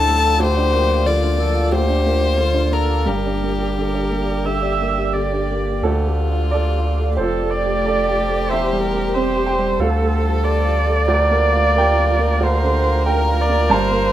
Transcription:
Already playing: upright piano D2 A2 A3 D4 F4, sub bass D2, ambient pad F3 F4 D5, viola A4, violin A5
0.07 upright piano A3
0.24 upright piano F4
0.40 upright piano D2, ambient pad A#3, viola G4, violin C5
0.57 upright piano D4
0.73 upright piano A#3
0.90 upright piano F4
1.05 upright piano D3, viola F4, violin D5
1.22 upright piano D4
1.38 upright piano A#3, viola A4
1.55 upright piano F4
1.72 upright piano D2, viola G4, violin C5
1.89 upright piano D4
2.06 upright piano A#3
2.22 upright piano F4
2.38 upright piano D3, viola F4
2.54 upright piano D4
2.71 upright piano A#3, viola A4, violin A#4
2.89 upright piano F4
3.06 sub bass G1, upright piano G2, violin G4, ambient pad G4 D5, viola A#4
3.26 upright piano D4
3.43 upright piano A#3
3.61 upright piano G4
3.78 upright piano D3, viola A#4
3.94 upright piano D4
4.11 upright piano A#3
4.29 upright piano G4
4.44 upright piano D3, viola E5
4.62 upright piano D4
4.81 upright piano A#3
4.97 upright piano G4
5.14 upright piano D3, viola D5
5.32 upright piano D4
5.51 upright piano A#3
5.69 upright piano G4
5.82 sub bass D2, upright piano D2 A4, ambient pad A3 F4 D5, violin F4
6.08 upright piano A3
6.32 upright piano F4
6.51 upright piano A4 D5
6.78 upright piano F4
7.00 upright piano A3
7.17 sub bass F1, violin G4, ambient pad G4 C5, viola A4, upright piano C5
7.21 upright piano F2
7.43 upright piano A3
7.50 viola D5
7.65 upright piano G4
7.85 upright piano A4 D5
8.09 upright piano G4
8.30 upright piano A3
8.49 sub bass E1, upright piano E2 E5, ambient pad G3, viola C5
8.73 upright piano G3
8.81 viola A#4
8.94 upright piano G4
9.14 upright piano C4, viola C5
9.36 upright piano G4
9.47 upright piano G5
9.59 upright piano G3
9.79 sub bass D2, upright piano D2 F5, ambient pad A3 F4 D5, violin A4, viola A4
10.02 upright piano A3
10.22 upright piano F4
10.43 upright piano A4, viola D5
10.65 upright piano F4
10.87 upright piano A3
11.08 upright piano D2 D5, ambient pad A#3, violin A#4
11.31 upright piano A#3
11.52 upright piano F4
11.76 upright piano A#4 G5
11.99 upright piano F4
12.19 upright piano A#3
12.40 upright piano D2, viola C5
12.44 upright piano F5
12.64 upright piano D3
12.84 upright piano F4
13.06 upright piano A#4 G5, viola A#4
13.28 upright piano F4
13.41 viola D5
13.49 upright piano A#3
13.70 sub bass G1, upright piano G2 A5, ambient pad G4 D5, viola C5
13.91 upright piano A#3

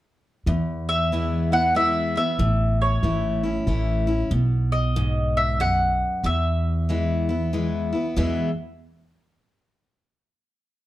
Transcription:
0.46 upright bass E2, steel-string acoustic guitar E2
0.89 mandolin E5
1.12 steel-string acoustic guitar E3 G#3 B3 E4
1.52 steel-string acoustic guitar B3 E4, mandolin F#5
1.75 steel-string acoustic guitar E3 G#3 B3 E4, mandolin E5
2.16 steel-string acoustic guitar B3 E4, mandolin E5
2.39 upright bass A1, steel-string acoustic guitar A2
2.82 mandolin C#5
3.03 upright bass G#1, steel-string acoustic guitar E3 A3 C#4 E4
3.43 steel-string acoustic guitar C#4 E4
3.67 upright bass A1, steel-string acoustic guitar E3 A3 C#4 E4
4.07 steel-string acoustic guitar C#4 E4
4.31 upright bass B1, steel-string acoustic guitar B2
4.72 mandolin D#5
4.96 steel-string acoustic guitar G#2
5.37 mandolin E5
5.60 steel-string acoustic guitar F#2, mandolin F#5
6.24 upright bass E2, steel-string acoustic guitar E2, mandolin E5
6.89 steel-string acoustic guitar E3 G#3 B3 E4
7.29 steel-string acoustic guitar B3 E4
7.53 steel-string acoustic guitar E3 G#3 B3 E4
7.93 steel-string acoustic guitar B3 E4
8.16 steel-string acoustic guitar E2 B2 E3 G#3 B3 E4, upright bass E2

